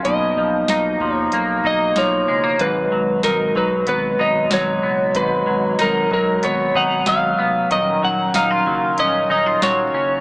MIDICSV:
0, 0, Header, 1, 6, 480
1, 0, Start_track
1, 0, Tempo, 638298
1, 34, Time_signature, 4, 2, 24, 8
1, 7674, End_track
2, 0, Start_track
2, 0, Title_t, "Electric slide guitar"
2, 0, Program_c, 0, 29
2, 37, Note_on_c, 0, 75, 91
2, 857, Note_off_c, 0, 75, 0
2, 857, Note_on_c, 0, 73, 91
2, 1245, Note_off_c, 0, 73, 0
2, 1254, Note_on_c, 0, 75, 88
2, 1490, Note_on_c, 0, 73, 88
2, 1491, Note_off_c, 0, 75, 0
2, 1963, Note_on_c, 0, 71, 82
2, 1976, Note_off_c, 0, 73, 0
2, 2435, Note_off_c, 0, 71, 0
2, 2438, Note_on_c, 0, 70, 76
2, 2683, Note_off_c, 0, 70, 0
2, 2686, Note_on_c, 0, 71, 79
2, 2904, Note_off_c, 0, 71, 0
2, 2925, Note_on_c, 0, 71, 86
2, 3166, Note_off_c, 0, 71, 0
2, 3166, Note_on_c, 0, 75, 78
2, 3383, Note_off_c, 0, 75, 0
2, 3410, Note_on_c, 0, 73, 87
2, 3880, Note_off_c, 0, 73, 0
2, 3883, Note_on_c, 0, 71, 84
2, 4370, Note_off_c, 0, 71, 0
2, 4373, Note_on_c, 0, 70, 84
2, 4604, Note_off_c, 0, 70, 0
2, 4613, Note_on_c, 0, 70, 80
2, 4847, Note_on_c, 0, 73, 92
2, 4850, Note_off_c, 0, 70, 0
2, 5087, Note_off_c, 0, 73, 0
2, 5087, Note_on_c, 0, 78, 84
2, 5326, Note_off_c, 0, 78, 0
2, 5329, Note_on_c, 0, 77, 87
2, 5803, Note_off_c, 0, 77, 0
2, 5806, Note_on_c, 0, 75, 84
2, 6047, Note_off_c, 0, 75, 0
2, 6050, Note_on_c, 0, 78, 81
2, 6281, Note_off_c, 0, 78, 0
2, 6284, Note_on_c, 0, 77, 80
2, 6763, Note_off_c, 0, 77, 0
2, 6766, Note_on_c, 0, 75, 98
2, 6996, Note_off_c, 0, 75, 0
2, 7005, Note_on_c, 0, 75, 77
2, 7241, Note_off_c, 0, 75, 0
2, 7244, Note_on_c, 0, 73, 92
2, 7674, Note_off_c, 0, 73, 0
2, 7674, End_track
3, 0, Start_track
3, 0, Title_t, "Clean electric guitar"
3, 0, Program_c, 1, 27
3, 0, Note_on_c, 1, 54, 57
3, 0, Note_on_c, 1, 61, 54
3, 0, Note_on_c, 1, 65, 65
3, 41, Note_on_c, 1, 47, 78
3, 282, Note_off_c, 1, 54, 0
3, 285, Note_on_c, 1, 53, 53
3, 521, Note_off_c, 1, 65, 0
3, 524, Note_on_c, 1, 63, 59
3, 547, Note_off_c, 1, 61, 0
3, 752, Note_off_c, 1, 53, 0
3, 761, Note_on_c, 1, 53, 54
3, 1002, Note_on_c, 1, 58, 60
3, 1237, Note_off_c, 1, 63, 0
3, 1240, Note_on_c, 1, 63, 55
3, 1472, Note_off_c, 1, 53, 0
3, 1481, Note_on_c, 1, 53, 56
3, 1712, Note_off_c, 1, 58, 0
3, 1715, Note_on_c, 1, 56, 54
3, 1831, Note_off_c, 1, 56, 0
3, 1831, Note_on_c, 1, 58, 47
3, 1954, Note_on_c, 1, 44, 80
3, 1957, Note_off_c, 1, 47, 0
3, 2001, Note_off_c, 1, 58, 0
3, 2005, Note_off_c, 1, 53, 0
3, 2194, Note_on_c, 1, 54, 52
3, 2431, Note_off_c, 1, 63, 0
3, 2434, Note_on_c, 1, 63, 54
3, 2672, Note_off_c, 1, 54, 0
3, 2675, Note_on_c, 1, 54, 55
3, 2912, Note_on_c, 1, 59, 53
3, 3151, Note_off_c, 1, 63, 0
3, 3154, Note_on_c, 1, 63, 62
3, 3390, Note_off_c, 1, 54, 0
3, 3393, Note_on_c, 1, 54, 58
3, 3625, Note_off_c, 1, 59, 0
3, 3634, Note_on_c, 1, 59, 53
3, 3865, Note_off_c, 1, 44, 0
3, 3874, Note_on_c, 1, 44, 85
3, 4108, Note_off_c, 1, 54, 0
3, 4111, Note_on_c, 1, 54, 59
3, 4349, Note_off_c, 1, 63, 0
3, 4352, Note_on_c, 1, 63, 60
3, 4594, Note_off_c, 1, 54, 0
3, 4597, Note_on_c, 1, 54, 58
3, 4828, Note_off_c, 1, 59, 0
3, 4837, Note_on_c, 1, 59, 64
3, 5077, Note_off_c, 1, 63, 0
3, 5080, Note_on_c, 1, 63, 65
3, 5314, Note_off_c, 1, 54, 0
3, 5317, Note_on_c, 1, 54, 58
3, 5545, Note_off_c, 1, 59, 0
3, 5554, Note_on_c, 1, 59, 62
3, 5794, Note_off_c, 1, 44, 0
3, 5796, Note_on_c, 1, 51, 82
3, 5842, Note_off_c, 1, 59, 0
3, 6034, Note_off_c, 1, 54, 0
3, 6037, Note_on_c, 1, 54, 60
3, 6275, Note_off_c, 1, 63, 0
3, 6278, Note_on_c, 1, 63, 63
3, 6397, Note_off_c, 1, 63, 0
3, 6397, Note_on_c, 1, 65, 55
3, 6517, Note_off_c, 1, 54, 0
3, 6520, Note_on_c, 1, 54, 54
3, 6760, Note_on_c, 1, 61, 60
3, 6991, Note_off_c, 1, 65, 0
3, 6994, Note_on_c, 1, 63, 64
3, 7116, Note_off_c, 1, 63, 0
3, 7116, Note_on_c, 1, 65, 54
3, 7232, Note_off_c, 1, 54, 0
3, 7235, Note_on_c, 1, 54, 58
3, 7468, Note_off_c, 1, 61, 0
3, 7477, Note_on_c, 1, 61, 51
3, 7674, Note_off_c, 1, 51, 0
3, 7674, Note_off_c, 1, 54, 0
3, 7674, Note_off_c, 1, 61, 0
3, 7674, Note_off_c, 1, 65, 0
3, 7674, End_track
4, 0, Start_track
4, 0, Title_t, "Woodwind section"
4, 0, Program_c, 2, 71
4, 38, Note_on_c, 2, 58, 68
4, 40, Note_on_c, 2, 47, 65
4, 43, Note_on_c, 2, 63, 76
4, 1937, Note_off_c, 2, 58, 0
4, 1939, Note_off_c, 2, 63, 0
4, 1949, Note_on_c, 2, 54, 73
4, 1949, Note_on_c, 2, 56, 75
4, 5663, Note_off_c, 2, 47, 0
4, 5663, Note_off_c, 2, 56, 0
4, 5791, Note_on_c, 2, 61, 69
4, 5792, Note_on_c, 2, 63, 68
4, 5793, Note_on_c, 2, 51, 75
4, 7674, Note_off_c, 2, 51, 0
4, 7674, Note_off_c, 2, 54, 0
4, 7674, Note_off_c, 2, 61, 0
4, 7674, Note_off_c, 2, 63, 0
4, 7674, End_track
5, 0, Start_track
5, 0, Title_t, "Sub bass"
5, 0, Program_c, 3, 38
5, 38, Note_on_c, 3, 35, 110
5, 247, Note_off_c, 3, 35, 0
5, 275, Note_on_c, 3, 35, 86
5, 486, Note_off_c, 3, 35, 0
5, 516, Note_on_c, 3, 35, 93
5, 726, Note_off_c, 3, 35, 0
5, 756, Note_on_c, 3, 39, 90
5, 966, Note_off_c, 3, 39, 0
5, 998, Note_on_c, 3, 35, 91
5, 1207, Note_off_c, 3, 35, 0
5, 1233, Note_on_c, 3, 35, 92
5, 1444, Note_off_c, 3, 35, 0
5, 1479, Note_on_c, 3, 35, 100
5, 1688, Note_off_c, 3, 35, 0
5, 1715, Note_on_c, 3, 30, 76
5, 1926, Note_off_c, 3, 30, 0
5, 1956, Note_on_c, 3, 32, 98
5, 2166, Note_off_c, 3, 32, 0
5, 2198, Note_on_c, 3, 32, 79
5, 2407, Note_off_c, 3, 32, 0
5, 2438, Note_on_c, 3, 32, 97
5, 2647, Note_off_c, 3, 32, 0
5, 2675, Note_on_c, 3, 35, 93
5, 2886, Note_off_c, 3, 35, 0
5, 2915, Note_on_c, 3, 32, 105
5, 3125, Note_off_c, 3, 32, 0
5, 3152, Note_on_c, 3, 32, 97
5, 3364, Note_off_c, 3, 32, 0
5, 3394, Note_on_c, 3, 32, 91
5, 3605, Note_off_c, 3, 32, 0
5, 3638, Note_on_c, 3, 30, 74
5, 3847, Note_off_c, 3, 30, 0
5, 3872, Note_on_c, 3, 32, 106
5, 4084, Note_off_c, 3, 32, 0
5, 4121, Note_on_c, 3, 32, 83
5, 4329, Note_off_c, 3, 32, 0
5, 4356, Note_on_c, 3, 32, 103
5, 4566, Note_off_c, 3, 32, 0
5, 4597, Note_on_c, 3, 35, 86
5, 4806, Note_off_c, 3, 35, 0
5, 4843, Note_on_c, 3, 32, 91
5, 5050, Note_off_c, 3, 32, 0
5, 5076, Note_on_c, 3, 32, 91
5, 5286, Note_off_c, 3, 32, 0
5, 5315, Note_on_c, 3, 32, 100
5, 5526, Note_off_c, 3, 32, 0
5, 5554, Note_on_c, 3, 29, 80
5, 5765, Note_off_c, 3, 29, 0
5, 5797, Note_on_c, 3, 27, 111
5, 6007, Note_off_c, 3, 27, 0
5, 6035, Note_on_c, 3, 27, 79
5, 6246, Note_off_c, 3, 27, 0
5, 6273, Note_on_c, 3, 27, 102
5, 6484, Note_off_c, 3, 27, 0
5, 6517, Note_on_c, 3, 30, 89
5, 6727, Note_off_c, 3, 30, 0
5, 6757, Note_on_c, 3, 27, 95
5, 6967, Note_off_c, 3, 27, 0
5, 6993, Note_on_c, 3, 27, 109
5, 7205, Note_off_c, 3, 27, 0
5, 7233, Note_on_c, 3, 27, 99
5, 7445, Note_off_c, 3, 27, 0
5, 7469, Note_on_c, 3, 30, 80
5, 7674, Note_off_c, 3, 30, 0
5, 7674, End_track
6, 0, Start_track
6, 0, Title_t, "Drums"
6, 35, Note_on_c, 9, 36, 101
6, 36, Note_on_c, 9, 42, 80
6, 111, Note_off_c, 9, 36, 0
6, 112, Note_off_c, 9, 42, 0
6, 514, Note_on_c, 9, 38, 104
6, 515, Note_on_c, 9, 42, 60
6, 589, Note_off_c, 9, 38, 0
6, 590, Note_off_c, 9, 42, 0
6, 755, Note_on_c, 9, 36, 92
6, 830, Note_off_c, 9, 36, 0
6, 992, Note_on_c, 9, 42, 65
6, 1067, Note_off_c, 9, 42, 0
6, 1234, Note_on_c, 9, 36, 90
6, 1309, Note_off_c, 9, 36, 0
6, 1473, Note_on_c, 9, 38, 104
6, 1474, Note_on_c, 9, 42, 61
6, 1548, Note_off_c, 9, 38, 0
6, 1549, Note_off_c, 9, 42, 0
6, 1951, Note_on_c, 9, 42, 74
6, 1953, Note_on_c, 9, 36, 104
6, 2026, Note_off_c, 9, 42, 0
6, 2029, Note_off_c, 9, 36, 0
6, 2431, Note_on_c, 9, 38, 91
6, 2432, Note_on_c, 9, 42, 65
6, 2506, Note_off_c, 9, 38, 0
6, 2508, Note_off_c, 9, 42, 0
6, 2673, Note_on_c, 9, 36, 93
6, 2748, Note_off_c, 9, 36, 0
6, 2908, Note_on_c, 9, 42, 65
6, 2913, Note_on_c, 9, 36, 79
6, 2983, Note_off_c, 9, 42, 0
6, 2988, Note_off_c, 9, 36, 0
6, 3152, Note_on_c, 9, 36, 87
6, 3227, Note_off_c, 9, 36, 0
6, 3390, Note_on_c, 9, 38, 103
6, 3391, Note_on_c, 9, 42, 66
6, 3465, Note_off_c, 9, 38, 0
6, 3466, Note_off_c, 9, 42, 0
6, 3871, Note_on_c, 9, 42, 85
6, 3873, Note_on_c, 9, 36, 106
6, 3946, Note_off_c, 9, 42, 0
6, 3948, Note_off_c, 9, 36, 0
6, 4353, Note_on_c, 9, 38, 95
6, 4354, Note_on_c, 9, 42, 66
6, 4428, Note_off_c, 9, 38, 0
6, 4429, Note_off_c, 9, 42, 0
6, 4594, Note_on_c, 9, 36, 94
6, 4669, Note_off_c, 9, 36, 0
6, 4834, Note_on_c, 9, 42, 68
6, 4909, Note_off_c, 9, 42, 0
6, 5074, Note_on_c, 9, 36, 93
6, 5149, Note_off_c, 9, 36, 0
6, 5310, Note_on_c, 9, 38, 100
6, 5312, Note_on_c, 9, 42, 63
6, 5386, Note_off_c, 9, 38, 0
6, 5387, Note_off_c, 9, 42, 0
6, 5796, Note_on_c, 9, 36, 102
6, 5796, Note_on_c, 9, 42, 81
6, 5871, Note_off_c, 9, 36, 0
6, 5871, Note_off_c, 9, 42, 0
6, 6273, Note_on_c, 9, 38, 93
6, 6273, Note_on_c, 9, 54, 60
6, 6274, Note_on_c, 9, 42, 66
6, 6348, Note_off_c, 9, 38, 0
6, 6348, Note_off_c, 9, 54, 0
6, 6349, Note_off_c, 9, 42, 0
6, 6515, Note_on_c, 9, 36, 95
6, 6590, Note_off_c, 9, 36, 0
6, 6751, Note_on_c, 9, 42, 62
6, 6755, Note_on_c, 9, 36, 75
6, 6826, Note_off_c, 9, 42, 0
6, 6830, Note_off_c, 9, 36, 0
6, 6994, Note_on_c, 9, 36, 89
6, 7069, Note_off_c, 9, 36, 0
6, 7236, Note_on_c, 9, 38, 99
6, 7236, Note_on_c, 9, 54, 59
6, 7237, Note_on_c, 9, 42, 61
6, 7311, Note_off_c, 9, 38, 0
6, 7312, Note_off_c, 9, 42, 0
6, 7312, Note_off_c, 9, 54, 0
6, 7674, End_track
0, 0, End_of_file